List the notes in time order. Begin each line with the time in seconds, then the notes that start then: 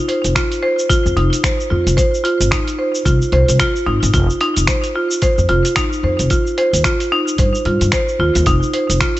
0.08 C5, closed hi-hat
0.24 F1, closed hi-hat, cabasa
0.36 F4, finger snap, kick, closed hi-hat, cabasa
0.52 closed hi-hat, cabasa
0.63 C5
0.79 cabasa
0.90 F4, kick, closed hi-hat, cabasa
1.06 F2, cabasa
1.16 F1 D#4, closed hi-hat
1.33 closed hi-hat, cabasa
1.44 C5, finger snap, kick, closed hi-hat, cabasa
1.60 cabasa
1.70 F2 F4
1.87 F1, closed hi-hat, cabasa
1.97 C5, kick, closed hi-hat, cabasa
2.14 cabasa
2.24 F4, closed hi-hat
2.40 G#1, closed hi-hat, cabasa
2.51 D#4, finger snap, kick, closed hi-hat, cabasa
2.68 closed hi-hat, cabasa
2.79 C5
2.95 cabasa
3.05 C2 F4, kick, closed hi-hat, cabasa
3.22 cabasa
3.32 C2 C5, closed hi-hat
3.48 C2, closed hi-hat, cabasa
3.60 F4, finger snap, kick, closed hi-hat, cabasa
3.76 cabasa
3.86 G#1 D#4
4.03 G#1, closed hi-hat, cabasa
4.14 F1 F4, kick, closed hi-hat, cabasa
4.30 cabasa
4.41 D#4, closed hi-hat
4.57 F1, closed hi-hat, cabasa
4.67 C5, finger snap, kick, closed hi-hat, cabasa
4.84 closed hi-hat, cabasa
4.95 F4
5.11 cabasa
5.22 C5, kick, closed hi-hat, cabasa
5.38 F2, cabasa
5.49 F1 F4, closed hi-hat
5.65 closed hi-hat, cabasa
5.76 D#4, finger snap, kick, closed hi-hat, cabasa
5.93 cabasa
6.03 F2 C5
6.19 F1, closed hi-hat, cabasa
6.30 F4, kick, closed hi-hat, cabasa
6.47 cabasa
6.58 C5, closed hi-hat
6.73 D#2, closed hi-hat, cabasa
6.84 F4, finger snap, kick, closed hi-hat, cabasa
7.00 closed hi-hat, cabasa
7.12 D#4
7.28 cabasa
7.38 G2 C5, kick, closed hi-hat, cabasa
7.55 cabasa
7.65 G2 F4, closed hi-hat
7.81 G2, closed hi-hat, cabasa
7.92 C5, finger snap, kick, closed hi-hat, cabasa
8.08 cabasa
8.19 D#2 F4
8.35 D#2, closed hi-hat, cabasa
8.46 F1 D#4, kick, closed hi-hat, cabasa
8.63 cabasa
8.73 C5, closed hi-hat
8.90 F1, closed hi-hat, cabasa
9.01 F4, finger snap, kick, closed hi-hat, cabasa
9.17 closed hi-hat